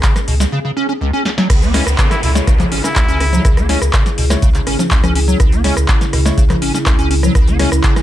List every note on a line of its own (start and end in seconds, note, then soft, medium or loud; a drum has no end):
0.00 0.48 C#3 medium
0.00 0.14 C#3 medium
0.00 0.55 B3 medium
0.00 0.48 C#4 medium
0.00 0.52 C#4 medium
0.00 0.48 E4 medium
0.00 0.52 G#4 medium
0.00 0.51 A#4 loud
0.00 kick loud
0.00 clap loud
0.00 closed hi-hat medium
0.00 shaker medium
0.16 0.20 E3 medium
0.16 cross-stick medium
0.16 snare soft
0.16 closed hi-hat soft
0.16 shaker soft
0.28 0.46 C#2 loud
0.28 0.35 B2 medium
0.28 open hi-hat loud
0.40 0.44 G#3 medium
0.40 snare medium
0.40 closed hi-hat soft
0.40 shaker medium
0.52 0.59 C#3 loud
0.65 0.71 C#3 medium
0.77 0.87 C#4 loud
0.89 0.93 C#4 loud
1.01 1.11 C#2 loud
1.13 1.23 C#4 loud
1.25 1.29 C#4 loud
1.25 snare medium
1.38 1.48 F#3 loud
1.38 snare medium
1.50 1.81 C#2 loud
1.50 1.64 C#3 medium
1.50 8.03 C#3 medium
1.50 8.03 C#4 medium
1.50 8.03 E4 medium
1.50 8.03 G#4 loud
1.50 kick loud
1.50 cross-stick medium
1.50 closed hi-hat medium
1.50 crash loud
1.50 downlifter medium
1.50 shaker medium
1.62 1.72 B3 loud
1.62 closed hi-hat soft
1.62 shaker soft
1.74 1.86 G#3 medium
1.74 1.84 C#4 loud
1.74 1.86 E4 medium
1.74 1.86 C#5 medium
1.74 cross-stick medium
1.74 snare medium
1.74 open hi-hat loud
1.87 1.95 C#2 medium
1.87 cross-stick medium
1.87 closed hi-hat soft
1.87 shaker medium
1.98 2.09 C#3 medium
1.98 kick loud
1.98 clap loud
1.98 closed hi-hat medium
1.98 shaker medium
2.11 2.15 E3 medium
2.11 2.19 E4 medium
2.11 cross-stick medium
2.11 snare soft
2.11 closed hi-hat soft
2.11 shaker soft
2.23 2.41 C#2 loud
2.23 2.30 B2 medium
2.23 2.31 E4 medium
2.23 open hi-hat loud
2.35 2.53 G#3 medium
2.35 2.39 G#3 medium
2.35 2.53 E4 medium
2.35 2.53 C#5 loud
2.35 snare medium
2.35 closed hi-hat soft
2.35 shaker medium
2.47 2.65 C#2 medium
2.47 2.54 C#3 loud
2.47 kick loud
2.47 cross-stick medium
2.47 closed hi-hat medium
2.47 shaker medium
2.59 2.66 C#3 medium
2.59 clap soft
2.59 closed hi-hat soft
2.59 low conga loud
2.59 shaker soft
2.72 2.81 G#1 medium
2.72 2.82 C#4 loud
2.72 open hi-hat loud
2.84 2.88 C#4 loud
2.84 3.52 E4 medium
2.84 cross-stick medium
2.84 snare soft
2.84 closed hi-hat soft
2.84 shaker medium
2.96 3.06 C#2 loud
2.96 kick loud
2.96 clap loud
2.96 closed hi-hat medium
2.96 shaker medium
3.08 3.40 C#2 loud
3.08 3.18 C#4 loud
3.08 closed hi-hat soft
3.08 shaker soft
3.20 3.25 C#4 loud
3.20 cross-stick medium
3.20 open hi-hat loud
3.33 3.43 F#3 loud
3.33 closed hi-hat soft
3.33 low conga loud
3.33 shaker medium
3.45 3.76 C#2 loud
3.45 3.59 C#3 medium
3.45 kick loud
3.45 cross-stick medium
3.45 closed hi-hat medium
3.45 shaker medium
3.57 3.67 B3 loud
3.57 cross-stick medium
3.57 closed hi-hat soft
3.57 shaker soft
3.69 3.81 G#3 medium
3.69 3.79 C#4 loud
3.69 3.81 E4 medium
3.69 3.81 C#5 medium
3.69 snare medium
3.69 open hi-hat loud
3.82 3.90 C#2 medium
3.82 cross-stick medium
3.82 closed hi-hat soft
3.82 shaker medium
3.93 4.04 C#3 medium
3.93 kick loud
3.93 cross-stick medium
3.93 clap loud
3.93 closed hi-hat medium
3.93 shaker medium
4.06 4.10 E3 medium
4.06 snare soft
4.06 closed hi-hat soft
4.06 shaker soft
4.18 4.36 C#2 loud
4.18 4.25 B2 medium
4.18 open hi-hat loud
4.30 4.48 G#3 medium
4.30 4.34 G#3 medium
4.30 4.48 E4 medium
4.30 4.48 C#5 medium
4.30 cross-stick medium
4.30 snare medium
4.30 closed hi-hat soft
4.30 shaker medium
4.42 4.60 C#2 loud
4.42 4.49 C#3 loud
4.42 kick loud
4.42 closed hi-hat medium
4.42 shaker medium
4.54 4.61 C#3 medium
4.54 clap soft
4.54 closed hi-hat soft
4.54 shaker soft
4.67 4.76 G#1 medium
4.67 4.77 C#4 loud
4.67 cross-stick medium
4.67 open hi-hat loud
4.79 4.83 C#4 loud
4.79 snare soft
4.79 closed hi-hat soft
4.79 low conga medium
4.79 shaker medium
4.91 5.01 C#2 loud
4.91 kick loud
4.91 clap loud
4.91 closed hi-hat medium
4.91 shaker medium
5.04 5.35 C#2 loud
5.04 5.14 C#4 loud
5.04 cross-stick medium
5.04 closed hi-hat soft
5.04 low conga loud
5.04 shaker soft
5.15 5.20 C#4 loud
5.15 open hi-hat loud
5.28 5.38 F#3 loud
5.28 closed hi-hat soft
5.28 shaker medium
5.40 5.71 C#2 loud
5.40 5.54 C#3 medium
5.40 kick loud
5.40 cross-stick medium
5.40 closed hi-hat medium
5.40 shaker medium
5.52 5.62 B3 loud
5.52 closed hi-hat soft
5.52 shaker soft
5.64 5.76 G#3 medium
5.64 5.75 C#4 loud
5.64 5.76 E4 medium
5.64 5.76 C#5 medium
5.64 snare medium
5.64 open hi-hat loud
5.77 5.85 C#2 loud
5.77 cross-stick medium
5.77 closed hi-hat soft
5.77 shaker medium
5.88 5.99 C#3 medium
5.88 kick loud
5.88 clap loud
5.88 closed hi-hat medium
5.88 shaker medium
6.01 6.05 E3 medium
6.01 snare soft
6.01 closed hi-hat soft
6.01 shaker soft
6.13 6.31 C#2 loud
6.13 6.20 B2 medium
6.13 cross-stick medium
6.13 open hi-hat loud
6.25 6.29 G#3 medium
6.25 6.43 G#3 loud
6.25 6.43 E4 medium
6.25 6.43 C#5 loud
6.25 snare medium
6.25 closed hi-hat soft
6.25 shaker medium
6.37 6.55 C#2 loud
6.37 6.44 C#3 loud
6.37 kick loud
6.37 closed hi-hat medium
6.37 shaker medium
6.50 6.56 C#3 medium
6.50 cross-stick medium
6.50 clap soft
6.50 closed hi-hat soft
6.50 low conga loud
6.50 shaker soft
6.62 6.71 G#1 medium
6.62 6.72 C#4 loud
6.62 open hi-hat loud
6.74 6.78 C#4 loud
6.74 snare soft
6.74 closed hi-hat soft
6.74 shaker medium
6.86 6.97 C#2 loud
6.86 kick loud
6.86 cross-stick medium
6.86 clap loud
6.86 closed hi-hat medium
6.86 shaker medium
6.99 7.30 C#2 loud
6.99 7.09 C#4 loud
6.99 closed hi-hat soft
6.99 shaker soft
7.10 7.15 C#4 loud
7.10 open hi-hat loud
7.23 7.33 F#3 loud
7.23 cross-stick medium
7.23 closed hi-hat soft
7.23 low conga loud
7.23 shaker medium
7.35 7.67 C#2 loud
7.35 7.49 C#3 medium
7.35 kick loud
7.35 cross-stick medium
7.35 closed hi-hat medium
7.35 shaker medium
7.47 7.57 B3 loud
7.47 closed hi-hat soft
7.47 shaker soft
7.59 7.71 G#3 medium
7.59 7.70 C#4 loud
7.59 7.71 E4 medium
7.59 7.71 C#5 medium
7.59 cross-stick medium
7.59 snare medium
7.59 open hi-hat loud
7.72 7.81 C#2 loud
7.72 cross-stick medium
7.72 closed hi-hat soft
7.72 shaker medium
7.83 7.94 C#3 medium
7.83 kick loud
7.83 clap loud
7.83 closed hi-hat medium
7.83 shaker medium
7.96 8.00 E3 medium
7.96 cross-stick medium
7.96 snare soft
7.96 closed hi-hat soft
7.96 shaker soft